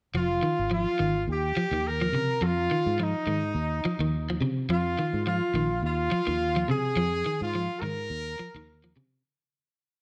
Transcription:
0.14 fingered electric bass F1, clean electric guitar F3, horn section F4
0.43 clean electric guitar D#3
0.59 fingered electric bass G#1
0.71 clean electric guitar F3, horn section F4
0.99 fingered electric bass G#1, clean electric guitar D#3
1.28 fingered electric bass D#2, horn section G4
1.56 clean electric guitar F3, muted fingered electric bass stroke
1.71 fingered electric bass D#2, clean electric guitar D#3
1.88 horn section A#4
2.01 clean electric guitar F3
2.12 fingered electric bass C3, clean electric guitar C#3
2.41 fingered electric bass F2, clean electric guitar F3, horn section F4
2.71 clean electric guitar D#3
2.86 fingered electric bass G#2
3.00 clean electric guitar F3, horn section D#4
3.27 fingered electric bass G#2, clean electric guitar D#3
3.55 fingered electric bass D#2
3.85 clean electric guitar F3, muted fingered electric bass stroke
3.99 fingered electric bass D#2, clean electric guitar D#3
4.30 clean electric guitar F3
4.40 fingered electric bass C3, clean electric guitar C#3
4.69 fingered electric bass F2, clean electric guitar F3, horn section F4
4.99 clean electric guitar D#3
5.13 fingered electric bass G#2
5.26 clean electric guitar F3, horn section F4
5.54 fingered electric bass A#1, clean electric guitar D#3
5.83 fingered electric bass D#2, horn section F4
6.12 clean electric guitar F3, muted fingered electric bass stroke
6.27 fingered electric bass D#2, clean electric guitar D#3
6.56 clean electric guitar F3
6.68 fingered electric bass C3, clean electric guitar C#3, horn section G#4
6.96 fingered electric bass F2, clean electric guitar F3
7.26 clean electric guitar D#3
7.41 fingered electric bass G#2, horn section F4
7.55 clean electric guitar F3
7.80 fingered electric bass G#2, clean electric guitar D#3, horn section A#4
8.10 fingered electric bass D#2
8.39 clean electric guitar F3, muted fingered electric bass stroke
8.54 fingered electric bass D#2, clean electric guitar D#3
8.84 clean electric guitar F3
8.96 fingered electric bass C3, clean electric guitar C#3

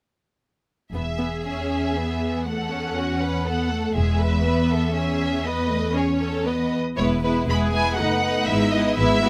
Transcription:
0.93 double bass section E1, cello section E2, viola section B3, violin section G#4 E5
1.19 viola section B3
1.45 viola section C#4, violin section E5
1.97 viola section B3
2.46 viola section A3, violin section A4 F#5
2.71 viola section C#4
2.96 violin section F#4
3.21 violin section B4
3.46 viola section B3, violin section A4 F#5
3.71 viola section A3
3.95 double bass section E1, cello section E2, viola section G#3, violin section G#4 E5
4.20 violin section B4
4.45 viola section B3, violin section B4
4.71 violin section A4
4.95 viola section C#4, violin section G#4 E5
5.45 viola section B3, violin section B4 D#5
5.70 viola section A3
5.95 viola section C#4, violin section G#4 C#5
6.20 violin section A4
6.45 viola section B3, violin section B4 D#5
6.97 double bass section E1, viola section G#3 B3, violin section E4 B4 C#5
7.23 viola section G#3 B3, violin section E4 B4
7.48 double bass section E1, viola section G#3 B3, violin section E4 B4 B5, cello section G#4
7.74 viola section G#3 B3, violin section E4 B4 G#5
7.97 double bass section F#1, viola section A3 B3, violin section D#4 B4 F#5, cello section D#4
8.22 viola section A3 B3, violin section D#4 B4
8.47 double bass section G#1, viola section G#3 B3, violin section E4 B4 E5
8.72 viola section G#3 B3, violin section E4 B4 D#5
8.97 double bass section G#1, viola section G#3 B3, cello section E4, violin section E4 B4 E5
9.22 viola section G#3 B3, violin section E4 B4, cello section F#4

